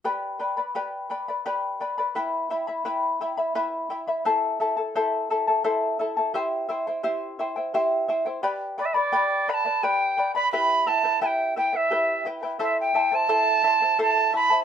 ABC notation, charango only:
X:1
M:3/4
L:1/16
Q:1/4=86
K:G
V:1 name="Charango"
[GBdgb]2 [Bdgb] [Bdb] [GBdgb]2 [Bdgb] [Bdb] [GBdgb]2 [Bdgb] [Bdb] | [EBegb]2 [Eegb] [Eeb] [EBegb]2 [Eegb] [Eeb] [EBegb]2 [Eegb] [Eeb] | [EAcea]2 [EAea] [EAa] [EAcea]2 [EAea] [EAa] [EAcea]2 [EAea] [EAa] | [EGceg]2 [Eceg] [Ecg] [EGceg]2 [Eceg] [Ecg] [EGceg]2 [Eceg] [Ecg] |
[GBdgb]2 [Bdgb] [Bdb] [GBdgb]2 [Bdgb] [Bdb] [GBdgb]2 [Bdgb] [Bdb] | [EGBeg]2 [EBeg] [EBg] [EGBeg]2 [EBeg] [EBg] [EGBeg]2 [EBeg] [EBg] | [EAcea]2 [Ecea] [Eca] [EAcea]2 [Ecea] [Eca] [EAcea]2 [Ecea] [Eca] |]